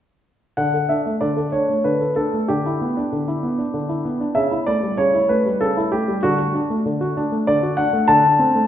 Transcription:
grand piano
0.57 D3 F#5
0.74 A4
0.89 D4 E5
1.06 A3
1.21 D3 D5
1.37 A4
1.52 D4 C#5
1.69 A3
1.84 D3 B4
2.01 A4
2.16 D4 A4
2.33 A3
2.48 D3 G4
2.66 E4
2.81 B3
2.97 D4
3.13 D3
3.28 E4
3.43 B3
3.58 D4
3.74 D3
3.89 E4
4.05 B3
4.20 D4
4.35 C#3 E5
4.51 E4
4.67 A3 D5
4.83 G3
4.97 C#3 C#5
5.14 E4
5.29 A3 B4
5.46 G3
5.61 C#3 A4
5.77 E4
5.92 A3 G4
6.08 G3
6.23 D3 F#4
6.39 F#4
6.55 D4
6.70 A3
6.86 D3
7.01 F#4
7.17 D4
7.32 A3
7.47 D3 D5
7.63 F#4
7.77 D4 F#5
7.93 A3
8.08 D3 A5
8.24 D4
8.39 C4
8.55 A3

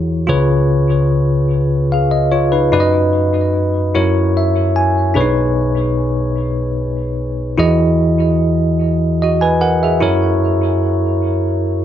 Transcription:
tine electric piano
Already playing: E2 E3 E4 F#4 G#4 C#5
0.27 C#2 C#3 F4 G#4 B4 C#5
1.92 G#4 F5
2.11 D#5
2.32 F4 C#5
2.52 D#4 B4
2.72 F#2 D#4 F#4 B4 D5
2.80 D#5
3.95 F#2 E4 F#4 A#4 C#5
4.37 E5
4.76 G#5
5.14 B1 B2 D4 G#4 B4 C#5
5.20 D#4
7.58 E2 E3 E4 F#4 G#4 D#5
9.22 F#4 D#5
9.41 B4 G#5
9.61 A#4 F#5
9.83 G#4 E5
10.00 F#2 E4 F#4 A#4 C#5

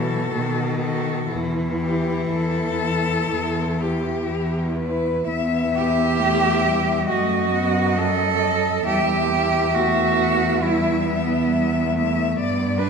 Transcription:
cello
Already playing: B2 E3 F#4 A4
0.33 B2 D#3
0.79 F#4 A4
1.30 E2 E3
1.81 E4 G4
2.31 E2 A4
2.84 E4
3.30 E2
3.81 E4 G4
4.30 E2
4.79 E4 B4
5.27 E2 B3 E5
5.49 E5
5.72 G4 E5
5.93 E5
6.15 A3 E5
6.39 E5
6.62 G3 E5
6.85 E5
7.06 F#2 A3 F#4 D#5
7.28 D#5
7.51 B3 D#5
7.71 D#5
7.95 F#3 A4 D#5
8.19 D#5
8.41 D#5
8.60 D#5
8.84 E2 G3 G4 E5
9.04 E5
9.28 B3 E5
9.52 E5
9.74 A3 F#4 E5
9.96 E5
10.18 E5
10.41 E5
10.62 G3 E4 E5
10.84 E5
11.07 B3 E5
11.29 E5
11.49 G3 E5
11.73 E5
11.94 A3 E5
12.17 E5
12.35 G2 B3
12.40 D5
12.59 D5
12.78 D4 B4 D5

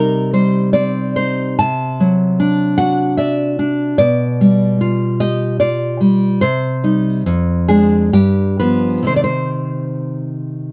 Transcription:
nylon-string guitar
Already playing: C3 G3 D#4 A#4
0.34 G3 C5
0.73 C4 D5
1.16 D#4 C5
1.59 C3 A5
2.00 F#3
2.40 D4
2.78 F#4 F#5
3.17 D5 E5
3.59 D4
3.98 B2 D5
4.41 G3
4.81 F4
5.20 G4 D#5
5.60 F4 D5
6.01 G3
6.41 C3 C5
6.84 G3 D#4
7.26 F2
7.68 G#3 D4 G#4
8.13 G2 G4
8.60 F3 B3 B4
9.02 C3 D#3 C4
9.07 C5
9.16 D5
9.24 C5

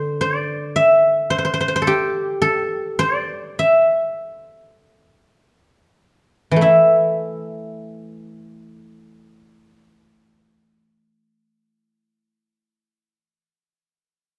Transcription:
guzheng
Already playing: D3 C5 D5
0.21 D5
0.76 E5
1.30 C5
1.38 C5
1.45 C5
1.54 C5
1.61 C5
1.68 C5
1.76 C5
1.82 A4
1.87 G4
2.42 A4
2.99 C5
3.16 D5
3.59 E5
6.51 E3
6.56 A3
6.61 E4 E5

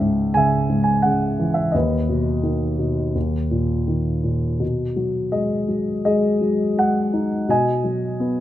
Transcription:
grand piano
Already playing: C#2 C#3 E5
0.00 G#2
0.34 C#3 E5 G#5
0.69 G#2
0.84 G#5
1.02 C#3 F#5
1.39 E3
1.54 E5
1.72 D#2 B4 D#5
2.09 B2
2.43 D#3
2.79 B2
3.15 D#2
3.51 A#2
3.87 D#3
4.24 A#2
4.60 B2
4.96 F#3
5.32 G#3 D#5
5.68 F#3
6.05 G#3 G#4 D#5
6.41 F#3
6.77 G#3 F#5
7.13 D#4
7.49 B2 D#5 G#5
7.84 F#3
8.20 B3

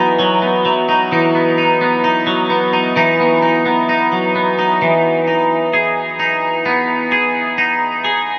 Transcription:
clean electric guitar
Already playing: E3 F#3 B3 D#4
0.19 F#3
0.42 B3
0.65 F#3
0.89 D#4
1.12 E3 D#4
1.35 B3
1.58 D#4
1.81 B3
2.04 D#4
2.27 F#3
2.50 B3
2.73 D#4
2.96 E3 D#4
3.20 B3
3.43 D#4
3.66 B3
3.89 D#4
4.12 F#3
4.35 B3
4.59 D#4
4.82 E3
5.27 D#4
5.74 G#4
6.20 D#4
6.66 B3
7.12 G#4
7.58 D#4
8.04 G#4

